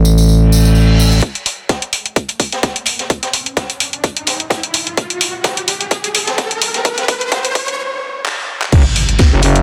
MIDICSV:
0, 0, Header, 1, 6, 480
1, 0, Start_track
1, 0, Tempo, 468750
1, 1254, Time_signature, 4, 2, 24, 8
1, 9855, End_track
2, 0, Start_track
2, 0, Title_t, "FM bass"
2, 0, Program_c, 0, 39
2, 0, Note_on_c, 0, 33, 86
2, 1233, Note_off_c, 0, 33, 0
2, 8934, Note_on_c, 0, 30, 100
2, 9044, Note_off_c, 0, 30, 0
2, 9546, Note_on_c, 0, 30, 98
2, 9637, Note_off_c, 0, 30, 0
2, 9655, Note_on_c, 0, 30, 94
2, 9855, Note_off_c, 0, 30, 0
2, 9855, End_track
3, 0, Start_track
3, 0, Title_t, "Impact"
3, 0, Program_c, 1, 103
3, 8934, Note_on_c, 1, 60, 77
3, 9855, Note_off_c, 1, 60, 0
3, 9855, End_track
4, 0, Start_track
4, 0, Title_t, "Reverse cymbal"
4, 0, Program_c, 2, 119
4, 294, Note_on_c, 2, 60, 76
4, 1254, Note_off_c, 2, 60, 0
4, 9855, End_track
5, 0, Start_track
5, 0, Title_t, "Riser"
5, 0, Program_c, 3, 103
5, 1254, Note_on_c, 3, 60, 77
5, 7974, Note_off_c, 3, 60, 0
5, 9855, End_track
6, 0, Start_track
6, 0, Title_t, "Drums"
6, 50, Note_on_c, 9, 54, 83
6, 153, Note_off_c, 9, 54, 0
6, 181, Note_on_c, 9, 54, 54
6, 284, Note_off_c, 9, 54, 0
6, 292, Note_on_c, 9, 54, 36
6, 395, Note_off_c, 9, 54, 0
6, 534, Note_on_c, 9, 54, 89
6, 637, Note_off_c, 9, 54, 0
6, 665, Note_on_c, 9, 54, 50
6, 767, Note_off_c, 9, 54, 0
6, 767, Note_on_c, 9, 54, 36
6, 869, Note_off_c, 9, 54, 0
6, 1019, Note_on_c, 9, 54, 87
6, 1121, Note_off_c, 9, 54, 0
6, 1147, Note_on_c, 9, 54, 57
6, 1250, Note_off_c, 9, 54, 0
6, 1254, Note_on_c, 9, 36, 110
6, 1254, Note_on_c, 9, 42, 85
6, 1356, Note_off_c, 9, 36, 0
6, 1356, Note_off_c, 9, 42, 0
6, 1385, Note_on_c, 9, 42, 53
6, 1488, Note_off_c, 9, 42, 0
6, 1494, Note_on_c, 9, 46, 100
6, 1497, Note_on_c, 9, 42, 64
6, 1597, Note_off_c, 9, 46, 0
6, 1599, Note_off_c, 9, 42, 0
6, 1734, Note_on_c, 9, 36, 113
6, 1734, Note_on_c, 9, 42, 80
6, 1735, Note_off_c, 9, 42, 0
6, 1735, Note_on_c, 9, 42, 81
6, 1739, Note_on_c, 9, 38, 112
6, 1836, Note_off_c, 9, 36, 0
6, 1838, Note_off_c, 9, 42, 0
6, 1841, Note_off_c, 9, 38, 0
6, 1865, Note_on_c, 9, 42, 54
6, 1968, Note_off_c, 9, 42, 0
6, 1974, Note_on_c, 9, 46, 100
6, 1975, Note_on_c, 9, 42, 60
6, 2077, Note_off_c, 9, 42, 0
6, 2077, Note_off_c, 9, 46, 0
6, 2105, Note_on_c, 9, 42, 37
6, 2208, Note_off_c, 9, 42, 0
6, 2214, Note_on_c, 9, 36, 119
6, 2214, Note_on_c, 9, 42, 89
6, 2215, Note_off_c, 9, 42, 0
6, 2215, Note_on_c, 9, 42, 82
6, 2316, Note_off_c, 9, 36, 0
6, 2317, Note_off_c, 9, 42, 0
6, 2340, Note_on_c, 9, 42, 46
6, 2345, Note_off_c, 9, 42, 0
6, 2345, Note_on_c, 9, 42, 53
6, 2448, Note_off_c, 9, 42, 0
6, 2453, Note_on_c, 9, 42, 68
6, 2454, Note_on_c, 9, 36, 57
6, 2455, Note_on_c, 9, 46, 93
6, 2555, Note_off_c, 9, 42, 0
6, 2556, Note_off_c, 9, 36, 0
6, 2557, Note_off_c, 9, 46, 0
6, 2585, Note_on_c, 9, 42, 38
6, 2591, Note_on_c, 9, 38, 54
6, 2687, Note_off_c, 9, 42, 0
6, 2693, Note_off_c, 9, 38, 0
6, 2694, Note_on_c, 9, 36, 117
6, 2694, Note_on_c, 9, 42, 84
6, 2695, Note_on_c, 9, 38, 118
6, 2698, Note_off_c, 9, 42, 0
6, 2698, Note_on_c, 9, 42, 80
6, 2796, Note_off_c, 9, 36, 0
6, 2797, Note_off_c, 9, 38, 0
6, 2800, Note_off_c, 9, 42, 0
6, 2825, Note_on_c, 9, 42, 52
6, 2925, Note_off_c, 9, 42, 0
6, 2925, Note_on_c, 9, 42, 68
6, 2934, Note_on_c, 9, 46, 106
6, 3028, Note_off_c, 9, 42, 0
6, 3037, Note_off_c, 9, 46, 0
6, 3065, Note_on_c, 9, 42, 37
6, 3071, Note_on_c, 9, 38, 46
6, 3167, Note_off_c, 9, 42, 0
6, 3173, Note_off_c, 9, 38, 0
6, 3174, Note_on_c, 9, 36, 117
6, 3174, Note_on_c, 9, 42, 77
6, 3176, Note_off_c, 9, 42, 0
6, 3176, Note_on_c, 9, 42, 83
6, 3276, Note_off_c, 9, 36, 0
6, 3278, Note_off_c, 9, 42, 0
6, 3305, Note_on_c, 9, 38, 51
6, 3305, Note_on_c, 9, 42, 53
6, 3407, Note_off_c, 9, 38, 0
6, 3408, Note_off_c, 9, 42, 0
6, 3415, Note_on_c, 9, 46, 104
6, 3417, Note_on_c, 9, 42, 67
6, 3517, Note_off_c, 9, 46, 0
6, 3519, Note_off_c, 9, 42, 0
6, 3545, Note_on_c, 9, 42, 38
6, 3648, Note_off_c, 9, 42, 0
6, 3653, Note_on_c, 9, 38, 118
6, 3654, Note_on_c, 9, 36, 127
6, 3655, Note_on_c, 9, 42, 80
6, 3656, Note_off_c, 9, 42, 0
6, 3656, Note_on_c, 9, 42, 92
6, 3756, Note_off_c, 9, 36, 0
6, 3756, Note_off_c, 9, 38, 0
6, 3758, Note_off_c, 9, 42, 0
6, 3786, Note_on_c, 9, 42, 53
6, 3787, Note_off_c, 9, 42, 0
6, 3787, Note_on_c, 9, 42, 46
6, 3889, Note_off_c, 9, 42, 0
6, 3895, Note_on_c, 9, 46, 109
6, 3898, Note_on_c, 9, 42, 60
6, 3997, Note_off_c, 9, 46, 0
6, 4001, Note_off_c, 9, 42, 0
6, 4025, Note_on_c, 9, 42, 37
6, 4128, Note_off_c, 9, 42, 0
6, 4134, Note_on_c, 9, 36, 123
6, 4135, Note_on_c, 9, 42, 77
6, 4140, Note_off_c, 9, 42, 0
6, 4140, Note_on_c, 9, 42, 83
6, 4236, Note_off_c, 9, 36, 0
6, 4242, Note_off_c, 9, 42, 0
6, 4265, Note_on_c, 9, 42, 54
6, 4368, Note_off_c, 9, 42, 0
6, 4371, Note_on_c, 9, 42, 71
6, 4375, Note_on_c, 9, 46, 103
6, 4377, Note_on_c, 9, 38, 52
6, 4473, Note_off_c, 9, 42, 0
6, 4477, Note_off_c, 9, 46, 0
6, 4479, Note_off_c, 9, 38, 0
6, 4505, Note_on_c, 9, 42, 38
6, 4608, Note_off_c, 9, 42, 0
6, 4609, Note_on_c, 9, 38, 102
6, 4614, Note_on_c, 9, 36, 116
6, 4614, Note_on_c, 9, 46, 65
6, 4615, Note_on_c, 9, 42, 90
6, 4711, Note_off_c, 9, 38, 0
6, 4716, Note_off_c, 9, 36, 0
6, 4717, Note_off_c, 9, 46, 0
6, 4718, Note_off_c, 9, 42, 0
6, 4745, Note_on_c, 9, 42, 50
6, 4848, Note_off_c, 9, 42, 0
6, 4851, Note_on_c, 9, 42, 65
6, 4854, Note_on_c, 9, 46, 115
6, 4953, Note_off_c, 9, 42, 0
6, 4956, Note_off_c, 9, 46, 0
6, 4985, Note_on_c, 9, 42, 37
6, 5087, Note_off_c, 9, 42, 0
6, 5094, Note_on_c, 9, 36, 97
6, 5094, Note_on_c, 9, 42, 74
6, 5097, Note_off_c, 9, 42, 0
6, 5097, Note_on_c, 9, 42, 81
6, 5196, Note_off_c, 9, 36, 0
6, 5199, Note_off_c, 9, 42, 0
6, 5225, Note_on_c, 9, 42, 49
6, 5327, Note_off_c, 9, 42, 0
6, 5334, Note_on_c, 9, 42, 65
6, 5334, Note_on_c, 9, 46, 111
6, 5436, Note_off_c, 9, 46, 0
6, 5437, Note_off_c, 9, 42, 0
6, 5571, Note_on_c, 9, 42, 95
6, 5572, Note_on_c, 9, 38, 127
6, 5574, Note_off_c, 9, 42, 0
6, 5574, Note_on_c, 9, 36, 105
6, 5574, Note_on_c, 9, 42, 78
6, 5675, Note_off_c, 9, 38, 0
6, 5676, Note_off_c, 9, 36, 0
6, 5676, Note_off_c, 9, 42, 0
6, 5705, Note_on_c, 9, 42, 53
6, 5808, Note_off_c, 9, 42, 0
6, 5814, Note_on_c, 9, 46, 112
6, 5818, Note_on_c, 9, 42, 72
6, 5917, Note_off_c, 9, 46, 0
6, 5920, Note_off_c, 9, 42, 0
6, 5945, Note_on_c, 9, 42, 35
6, 6047, Note_off_c, 9, 42, 0
6, 6051, Note_on_c, 9, 42, 94
6, 6053, Note_on_c, 9, 36, 101
6, 6054, Note_off_c, 9, 42, 0
6, 6054, Note_on_c, 9, 42, 75
6, 6156, Note_off_c, 9, 36, 0
6, 6157, Note_off_c, 9, 42, 0
6, 6185, Note_on_c, 9, 42, 51
6, 6188, Note_off_c, 9, 42, 0
6, 6188, Note_on_c, 9, 42, 42
6, 6291, Note_off_c, 9, 42, 0
6, 6293, Note_on_c, 9, 42, 73
6, 6295, Note_on_c, 9, 46, 104
6, 6395, Note_off_c, 9, 42, 0
6, 6397, Note_off_c, 9, 46, 0
6, 6425, Note_on_c, 9, 42, 37
6, 6426, Note_on_c, 9, 38, 57
6, 6528, Note_off_c, 9, 42, 0
6, 6529, Note_off_c, 9, 38, 0
6, 6533, Note_on_c, 9, 36, 101
6, 6534, Note_on_c, 9, 42, 82
6, 6538, Note_off_c, 9, 42, 0
6, 6538, Note_on_c, 9, 38, 118
6, 6538, Note_on_c, 9, 42, 79
6, 6636, Note_off_c, 9, 36, 0
6, 6640, Note_off_c, 9, 38, 0
6, 6640, Note_off_c, 9, 42, 0
6, 6665, Note_on_c, 9, 42, 51
6, 6768, Note_off_c, 9, 42, 0
6, 6774, Note_on_c, 9, 46, 118
6, 6775, Note_on_c, 9, 42, 75
6, 6877, Note_off_c, 9, 42, 0
6, 6877, Note_off_c, 9, 46, 0
6, 6905, Note_on_c, 9, 42, 37
6, 6910, Note_on_c, 9, 38, 51
6, 7007, Note_off_c, 9, 42, 0
6, 7013, Note_off_c, 9, 38, 0
6, 7013, Note_on_c, 9, 36, 102
6, 7014, Note_on_c, 9, 42, 77
6, 7015, Note_off_c, 9, 42, 0
6, 7015, Note_on_c, 9, 42, 81
6, 7116, Note_off_c, 9, 36, 0
6, 7118, Note_off_c, 9, 42, 0
6, 7145, Note_on_c, 9, 42, 50
6, 7148, Note_on_c, 9, 38, 55
6, 7247, Note_off_c, 9, 42, 0
6, 7250, Note_off_c, 9, 38, 0
6, 7253, Note_on_c, 9, 36, 103
6, 7254, Note_on_c, 9, 46, 106
6, 7257, Note_on_c, 9, 42, 75
6, 7355, Note_off_c, 9, 36, 0
6, 7356, Note_off_c, 9, 46, 0
6, 7359, Note_off_c, 9, 42, 0
6, 7384, Note_on_c, 9, 42, 35
6, 7487, Note_off_c, 9, 42, 0
6, 7493, Note_on_c, 9, 36, 106
6, 7494, Note_on_c, 9, 42, 80
6, 7495, Note_off_c, 9, 42, 0
6, 7495, Note_on_c, 9, 42, 94
6, 7501, Note_on_c, 9, 38, 127
6, 7595, Note_off_c, 9, 36, 0
6, 7597, Note_off_c, 9, 42, 0
6, 7603, Note_off_c, 9, 38, 0
6, 7624, Note_on_c, 9, 42, 42
6, 7625, Note_off_c, 9, 42, 0
6, 7625, Note_on_c, 9, 42, 54
6, 7727, Note_off_c, 9, 42, 0
6, 7733, Note_on_c, 9, 36, 109
6, 7734, Note_on_c, 9, 46, 111
6, 7735, Note_on_c, 9, 42, 65
6, 7836, Note_off_c, 9, 36, 0
6, 7837, Note_off_c, 9, 42, 0
6, 7837, Note_off_c, 9, 46, 0
6, 7865, Note_on_c, 9, 42, 36
6, 7968, Note_off_c, 9, 42, 0
6, 8454, Note_on_c, 9, 39, 117
6, 8557, Note_off_c, 9, 39, 0
6, 8825, Note_on_c, 9, 39, 86
6, 8927, Note_off_c, 9, 39, 0
6, 8933, Note_on_c, 9, 42, 91
6, 8934, Note_off_c, 9, 42, 0
6, 8934, Note_on_c, 9, 36, 117
6, 8934, Note_on_c, 9, 42, 71
6, 8934, Note_on_c, 9, 49, 105
6, 9036, Note_off_c, 9, 36, 0
6, 9036, Note_off_c, 9, 42, 0
6, 9036, Note_off_c, 9, 49, 0
6, 9172, Note_on_c, 9, 42, 72
6, 9174, Note_on_c, 9, 46, 107
6, 9274, Note_off_c, 9, 42, 0
6, 9276, Note_off_c, 9, 46, 0
6, 9305, Note_on_c, 9, 42, 55
6, 9407, Note_off_c, 9, 42, 0
6, 9407, Note_on_c, 9, 42, 90
6, 9412, Note_on_c, 9, 38, 127
6, 9414, Note_off_c, 9, 42, 0
6, 9414, Note_on_c, 9, 36, 120
6, 9414, Note_on_c, 9, 42, 72
6, 9417, Note_off_c, 9, 38, 0
6, 9417, Note_on_c, 9, 38, 111
6, 9516, Note_off_c, 9, 36, 0
6, 9516, Note_off_c, 9, 42, 0
6, 9519, Note_off_c, 9, 38, 0
6, 9648, Note_on_c, 9, 42, 66
6, 9654, Note_on_c, 9, 46, 105
6, 9751, Note_off_c, 9, 42, 0
6, 9756, Note_off_c, 9, 46, 0
6, 9785, Note_on_c, 9, 42, 56
6, 9855, Note_off_c, 9, 42, 0
6, 9855, End_track
0, 0, End_of_file